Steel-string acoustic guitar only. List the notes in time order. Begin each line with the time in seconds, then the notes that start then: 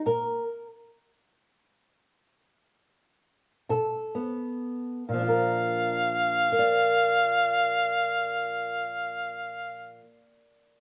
Already playing: A#3
0.06 A#2 A#4
3.69 B2 A4
4.15 B3
5.09 A#2
5.14 F3
5.19 D4
5.24 F4
5.28 A#4
6.52 A#4
6.59 D5